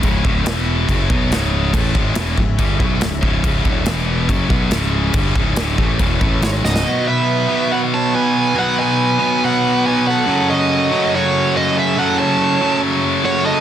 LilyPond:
<<
  \new Staff \with { instrumentName = "Lead electric guitar" } { \time 4/4 \key b \mixolydian \tempo 4 = 141 r1 | r1 | r1 | r2. cis''8 dis''8~ |
dis''8 e''4. fis''8 a''8 gis''4 | fis''8 gis''4. fis''4 gis''8 fis''8~ | fis''8 dis''4. cis''4 dis''8 e''8 | fis''8 a''4. r4 cis''8 dis''8 | }
  \new Staff \with { instrumentName = "Lead electric guitar" } { \time 4/4 \key b \mixolydian r1 | r1 | r1 | r2. e'8 fis'8~ |
fis'8 b'4. b'8 cis''8 b'4 | b'8 b'4. b'4 b'8 a'8~ | a'8 fis'4. fis'4 fis'8 gis'8 | a'8 cis''4. r4 fis'8 a'8 | }
  \new Staff \with { instrumentName = "Pipe organ" } { \time 4/4 \key b \mixolydian << { <gis cis' cis'' e''>4 <e b b' b''>4 <gis cis' cis'' e''>2~ | <gis cis' cis'' e''>1~ | <gis cis' cis'' e''>4 <e b b' b''>4 <gis cis' cis'' e''>2~ | <gis cis' cis'' e''>1 |
<dis fis fis' b'>1~ | <dis fis fis' b'>1 | <a a' cis''>1~ | <a a' cis''>1 | } \\ { e'4 e'2.~ | e'1~ | e'4 e'2.~ | e'1 |
b1~ | b1 | cis'1~ | cis'1 | } >> }
  \new Staff \with { instrumentName = "Distorted electric guitar" } { \clef bass \time 4/4 \key b \mixolydian <cis, gis, cis>8 <d, a, d>8 <e, b, e>4 <fis, cis fis>8 <b, fis b>8 <cis, gis, cis>4 | <a, e a>8 <gis, dis gis>8 <e, b, e>8 <cis, gis,>8 <g, d g>8 <b, fis b>8 <cis, gis,>8 <cis, gis, cis>8 | <cis, gis, cis>8 <d, a, d>8 <e, b, e>4 <fis, cis fis>8 <b, fis b>8 <cis, gis, cis>4 | <g, d g>8 <cis, gis, cis>8 <d, a, d>8 <a, e a>8 <e, b, e>8 <a, e a>8 <gis, dis gis>8 <cis, gis, cis>8 |
<b, fis b>4. <b, fis b>2~ <b, fis b>8 | <b, fis b>4. <b, fis b>2~ <b, fis b>8 | <fis, cis fis>4. <fis, cis fis>2~ <fis, cis fis>8 | <fis, cis fis>4. <fis, cis fis>2~ <fis, cis fis>8 | }
  \new Staff \with { instrumentName = "Picked electric bass" } { \clef bass \time 4/4 \key b \mixolydian cis,,8 d,,8 e,,4 fis,,8 b,,8 cis,,4 | a,,8 gis,,8 e,,8 cis,,8 g,,8 b,,8 cis,,8 cis,,8 | cis,,8 d,,8 e,,4 fis,,8 b,,8 cis,,4 | g,,8 cis,,8 d,,8 a,,8 e,,8 a,,8 gis,,8 cis,,8 |
r1 | r1 | r1 | r1 | }
  \new DrumStaff \with { instrumentName = "Drums" } \drummode { \time 4/4 <cymc bd>8 bd8 <cymc sn>4 <cymc bd>8 bd8 <cymc sn>4 | <cymc bd>8 bd8 <cymc sn>8 bd8 <cymc bd>8 bd8 <cymc sn>8 bd8 | <cymc bd>8 bd8 <cymc sn>4 <cymc bd>8 bd8 <cymc sn>4 | <cymc bd>8 bd8 <cymc sn>8 bd8 <cymc bd>8 bd8 <cymc sn>8 sn16 sn16 |
r4 r4 r4 r4 | r4 r4 r4 r4 | r4 r4 r4 r4 | r4 r4 r4 r4 | }
>>